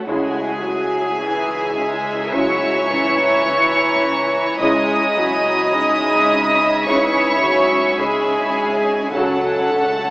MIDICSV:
0, 0, Header, 1, 13, 480
1, 0, Start_track
1, 0, Key_signature, 4, "minor"
1, 0, Tempo, 1132075
1, 35, Time_signature, 4, 2, 24, 8
1, 4284, End_track
2, 0, Start_track
2, 0, Title_t, "Violin section"
2, 0, Program_c, 0, 48
2, 34, Note_on_c, 0, 80, 79
2, 978, Note_off_c, 0, 80, 0
2, 997, Note_on_c, 0, 85, 85
2, 1939, Note_off_c, 0, 85, 0
2, 1950, Note_on_c, 0, 87, 99
2, 2896, Note_off_c, 0, 87, 0
2, 2910, Note_on_c, 0, 85, 86
2, 3391, Note_on_c, 0, 80, 80
2, 3392, Note_off_c, 0, 85, 0
2, 3863, Note_off_c, 0, 80, 0
2, 3872, Note_on_c, 0, 81, 83
2, 4284, Note_off_c, 0, 81, 0
2, 4284, End_track
3, 0, Start_track
3, 0, Title_t, "Violin section"
3, 0, Program_c, 1, 48
3, 39, Note_on_c, 1, 80, 44
3, 518, Note_on_c, 1, 82, 54
3, 1004, Note_on_c, 1, 83, 51
3, 2846, Note_off_c, 1, 82, 0
3, 2846, Note_off_c, 1, 83, 0
3, 2846, Note_on_c, 1, 83, 54
3, 3619, Note_off_c, 1, 83, 0
3, 3620, Note_off_c, 1, 80, 0
3, 4284, End_track
4, 0, Start_track
4, 0, Title_t, "Violin section"
4, 0, Program_c, 2, 48
4, 43, Note_on_c, 2, 76, 77
4, 1942, Note_off_c, 2, 76, 0
4, 1949, Note_on_c, 2, 76, 81
4, 3855, Note_off_c, 2, 76, 0
4, 3875, Note_on_c, 2, 78, 72
4, 4284, Note_off_c, 2, 78, 0
4, 4284, End_track
5, 0, Start_track
5, 0, Title_t, "Vibraphone"
5, 0, Program_c, 3, 11
5, 0, Control_c, 3, 64, 127
5, 41, Control_c, 3, 64, 0
5, 114, Control_c, 3, 64, 127
5, 2432, Note_on_c, 3, 63, 50
5, 2435, Note_on_c, 3, 87, 64
5, 3857, Note_off_c, 3, 63, 0
5, 3858, Note_off_c, 3, 87, 0
5, 3883, Control_c, 3, 64, 0
5, 3946, Control_c, 3, 64, 127
5, 4284, End_track
6, 0, Start_track
6, 0, Title_t, "Synth texture"
6, 0, Program_c, 4, 99
6, 32, Note_on_c, 4, 64, 51
6, 32, Note_on_c, 4, 73, 50
6, 35, Note_on_c, 4, 80, 51
6, 1937, Note_off_c, 4, 73, 0
6, 1944, Note_off_c, 4, 80, 0
6, 1949, Note_on_c, 4, 80, 54
6, 1952, Note_on_c, 4, 61, 45
6, 1952, Note_on_c, 4, 73, 53
6, 1954, Note_off_c, 4, 64, 0
6, 3855, Note_off_c, 4, 80, 0
6, 3857, Note_off_c, 4, 61, 0
6, 3857, Note_off_c, 4, 73, 0
6, 3870, Note_on_c, 4, 73, 55
6, 3870, Note_on_c, 4, 78, 55
6, 3871, Note_on_c, 4, 66, 58
6, 4284, Note_off_c, 4, 66, 0
6, 4284, Note_off_c, 4, 73, 0
6, 4284, Note_off_c, 4, 78, 0
6, 4284, End_track
7, 0, Start_track
7, 0, Title_t, "Cello section"
7, 0, Program_c, 5, 48
7, 31, Note_on_c, 5, 68, 80
7, 976, Note_off_c, 5, 68, 0
7, 989, Note_on_c, 5, 73, 99
7, 1952, Note_off_c, 5, 73, 0
7, 1955, Note_on_c, 5, 75, 91
7, 2898, Note_off_c, 5, 75, 0
7, 2920, Note_on_c, 5, 73, 97
7, 3396, Note_on_c, 5, 68, 88
7, 3397, Note_off_c, 5, 73, 0
7, 3875, Note_off_c, 5, 68, 0
7, 3878, Note_on_c, 5, 69, 80
7, 4284, Note_off_c, 5, 69, 0
7, 4284, End_track
8, 0, Start_track
8, 0, Title_t, "French horn section"
8, 0, Program_c, 6, 60
8, 28, Note_on_c, 6, 61, 69
8, 29, Note_on_c, 6, 64, 64
8, 221, Note_off_c, 6, 61, 0
8, 221, Note_off_c, 6, 64, 0
8, 991, Note_on_c, 6, 64, 68
8, 998, Note_on_c, 6, 61, 60
8, 1182, Note_off_c, 6, 64, 0
8, 1186, Note_off_c, 6, 61, 0
8, 1952, Note_on_c, 6, 64, 70
8, 1955, Note_on_c, 6, 61, 68
8, 2143, Note_off_c, 6, 64, 0
8, 2144, Note_off_c, 6, 61, 0
8, 2911, Note_on_c, 6, 52, 66
8, 2916, Note_on_c, 6, 61, 59
8, 3102, Note_off_c, 6, 52, 0
8, 3105, Note_off_c, 6, 61, 0
8, 3876, Note_on_c, 6, 66, 69
8, 3878, Note_on_c, 6, 61, 66
8, 4065, Note_off_c, 6, 66, 0
8, 4066, Note_off_c, 6, 61, 0
8, 4284, End_track
9, 0, Start_track
9, 0, Title_t, "Viola section"
9, 0, Program_c, 7, 48
9, 37, Note_on_c, 7, 56, 64
9, 269, Note_on_c, 7, 54, 61
9, 271, Note_off_c, 7, 56, 0
9, 512, Note_off_c, 7, 54, 0
9, 515, Note_on_c, 7, 52, 66
9, 750, Note_off_c, 7, 52, 0
9, 753, Note_on_c, 7, 56, 76
9, 989, Note_off_c, 7, 56, 0
9, 990, Note_on_c, 7, 54, 71
9, 1229, Note_on_c, 7, 52, 74
9, 1233, Note_off_c, 7, 54, 0
9, 1950, Note_on_c, 7, 56, 71
9, 1952, Note_off_c, 7, 52, 0
9, 2188, Note_off_c, 7, 56, 0
9, 2192, Note_on_c, 7, 54, 68
9, 2433, Note_off_c, 7, 54, 0
9, 2433, Note_on_c, 7, 56, 75
9, 2914, Note_off_c, 7, 56, 0
9, 2915, Note_on_c, 7, 52, 62
9, 3148, Note_on_c, 7, 54, 64
9, 3155, Note_off_c, 7, 52, 0
9, 3387, Note_off_c, 7, 54, 0
9, 3396, Note_on_c, 7, 56, 71
9, 3875, Note_on_c, 7, 54, 66
9, 3876, Note_off_c, 7, 56, 0
9, 4108, Note_on_c, 7, 57, 70
9, 4110, Note_off_c, 7, 54, 0
9, 4284, Note_off_c, 7, 57, 0
9, 4284, End_track
10, 0, Start_track
10, 0, Title_t, "Trombone section"
10, 0, Program_c, 8, 61
10, 32, Note_on_c, 8, 56, 63
10, 34, Note_on_c, 8, 49, 64
10, 223, Note_off_c, 8, 49, 0
10, 223, Note_off_c, 8, 56, 0
10, 991, Note_on_c, 8, 49, 56
10, 994, Note_on_c, 8, 56, 64
10, 1182, Note_off_c, 8, 49, 0
10, 1184, Note_off_c, 8, 56, 0
10, 1955, Note_on_c, 8, 56, 67
10, 1957, Note_on_c, 8, 49, 73
10, 2144, Note_off_c, 8, 56, 0
10, 2145, Note_off_c, 8, 49, 0
10, 2913, Note_on_c, 8, 49, 62
10, 2913, Note_on_c, 8, 56, 67
10, 3103, Note_off_c, 8, 49, 0
10, 3103, Note_off_c, 8, 56, 0
10, 3876, Note_on_c, 8, 54, 65
10, 3878, Note_on_c, 8, 49, 65
10, 4065, Note_off_c, 8, 54, 0
10, 4066, Note_off_c, 8, 49, 0
10, 4284, End_track
11, 0, Start_track
11, 0, Title_t, "Cello section"
11, 0, Program_c, 10, 48
11, 33, Note_on_c, 10, 49, 74
11, 177, Note_off_c, 10, 49, 0
11, 273, Note_on_c, 10, 49, 57
11, 417, Note_off_c, 10, 49, 0
11, 508, Note_on_c, 10, 61, 50
11, 654, Note_off_c, 10, 61, 0
11, 749, Note_on_c, 10, 49, 57
11, 895, Note_off_c, 10, 49, 0
11, 987, Note_on_c, 10, 49, 73
11, 1134, Note_off_c, 10, 49, 0
11, 1228, Note_on_c, 10, 49, 61
11, 1374, Note_off_c, 10, 49, 0
11, 1468, Note_on_c, 10, 49, 58
11, 1614, Note_off_c, 10, 49, 0
11, 1709, Note_on_c, 10, 49, 43
11, 1855, Note_off_c, 10, 49, 0
11, 1950, Note_on_c, 10, 49, 78
11, 2096, Note_off_c, 10, 49, 0
11, 2192, Note_on_c, 10, 49, 59
11, 2337, Note_off_c, 10, 49, 0
11, 2434, Note_on_c, 10, 61, 58
11, 2578, Note_off_c, 10, 61, 0
11, 2673, Note_on_c, 10, 49, 55
11, 2818, Note_off_c, 10, 49, 0
11, 2911, Note_on_c, 10, 49, 71
11, 3056, Note_off_c, 10, 49, 0
11, 3148, Note_on_c, 10, 49, 56
11, 3294, Note_off_c, 10, 49, 0
11, 3392, Note_on_c, 10, 49, 57
11, 3537, Note_off_c, 10, 49, 0
11, 3631, Note_on_c, 10, 49, 39
11, 3776, Note_off_c, 10, 49, 0
11, 3871, Note_on_c, 10, 49, 84
11, 4016, Note_off_c, 10, 49, 0
11, 4114, Note_on_c, 10, 49, 58
11, 4259, Note_off_c, 10, 49, 0
11, 4284, End_track
12, 0, Start_track
12, 0, Title_t, "Timpani"
12, 0, Program_c, 11, 47
12, 3876, Note_on_c, 11, 49, 32
12, 3902, Note_off_c, 11, 49, 0
12, 3907, Note_on_c, 11, 49, 31
12, 3935, Note_off_c, 11, 49, 0
12, 3940, Note_on_c, 11, 49, 32
12, 3969, Note_off_c, 11, 49, 0
12, 3974, Note_on_c, 11, 49, 32
12, 3993, Note_off_c, 11, 49, 0
12, 3998, Note_on_c, 11, 49, 33
12, 4025, Note_off_c, 11, 49, 0
12, 4065, Note_on_c, 11, 49, 33
12, 4086, Note_off_c, 11, 49, 0
12, 4091, Note_on_c, 11, 49, 32
12, 4122, Note_off_c, 11, 49, 0
12, 4161, Note_on_c, 11, 49, 30
12, 4185, Note_off_c, 11, 49, 0
12, 4190, Note_on_c, 11, 49, 28
12, 4215, Note_off_c, 11, 49, 0
12, 4220, Note_on_c, 11, 49, 32
12, 4252, Note_off_c, 11, 49, 0
12, 4256, Note_on_c, 11, 49, 36
12, 4284, Note_off_c, 11, 49, 0
12, 4284, End_track
13, 0, Start_track
13, 0, Title_t, "Double bass section"
13, 0, Program_c, 12, 48
13, 39, Note_on_c, 12, 37, 67
13, 1940, Note_off_c, 12, 37, 0
13, 1955, Note_on_c, 12, 37, 68
13, 3858, Note_off_c, 12, 37, 0
13, 3875, Note_on_c, 12, 37, 79
13, 4284, Note_off_c, 12, 37, 0
13, 4284, End_track
0, 0, End_of_file